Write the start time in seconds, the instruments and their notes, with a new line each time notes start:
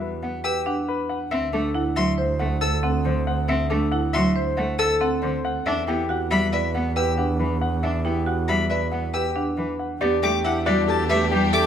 Already playing: double bass E2
0.01 grand piano B4
0.23 cello B3, grand piano F#5
0.44 grand piano G4, marimba B4, violin E6
0.66 marimba D4, grand piano F#5
0.88 grand piano B4
1.09 grand piano F#5
1.31 double bass D2, cello C4, grand piano E5
1.53 cello A3, marimba D4, grand piano A4
1.75 marimba E4, grand piano F#5
1.96 cello F#3, grand piano E5, violin C6
2.18 marimba C5, grand piano C5
2.39 cello A3, grand piano F#5
2.61 marimba A4, grand piano A4, violin E6
2.83 marimba C4, grand piano F#5
3.05 cello D3, grand piano C5
3.27 grand piano F#5
3.48 cello C4, grand piano E5
3.70 cello A3, marimba D4, grand piano A4
3.92 marimba E4, grand piano F#5
4.13 cello F#3, grand piano E5, violin C6
4.35 grand piano C5, marimba C5
4.57 cello A3, grand piano F#5
4.79 grand piano A4, marimba A4, violin E6
5.01 marimba C4, grand piano F#5
5.22 cello D3, grand piano C5
5.45 grand piano F#5
5.66 double bass E2, cello D4, grand piano E5
5.87 cello B3, marimba E4, grand piano G4
6.09 marimba F#4, grand piano F#5
6.31 cello G3, grand piano E5, violin B5
6.52 grand piano B4, marimba D5, violin E5
6.75 cello B3, grand piano F#5
6.96 grand piano G4, marimba B4, violin E6
7.18 marimba D4, grand piano F#5
7.40 cello E3, grand piano B4
7.61 grand piano F#5
7.83 cello D4, grand piano E5
8.05 cello B3, marimba E4, grand piano G4
8.26 marimba F#4, grand piano F#5
8.48 cello G3, grand piano E5, violin B5
8.70 grand piano B4, marimba D5, violin E5
8.92 cello B3, grand piano F#5
9.14 grand piano G4, marimba B4, violin E6
9.36 marimba D4, grand piano F#5
9.57 cello E3, grand piano B4
9.79 grand piano F#5
10.01 double bass E2, cello B3, violin section D4 G4, marimba G4, clarinet G4, grand piano D5
10.22 cello A3, clarinet G4, grand piano G4, violin D6
10.44 marimba E4, clarinet G4, grand piano E5, violin F#5
10.66 cello G3, marimba F#4, clarinet G4, grand piano D5, violin E5
10.88 clarinet G4, grand piano A4, violin A5
11.09 cello A3, clarinet G4, marimba B4, violin E5, grand piano E5
11.31 cello G3, clarinet G4, grand piano G4
11.53 clarinet G4, marimba A4, grand piano E5, violin D6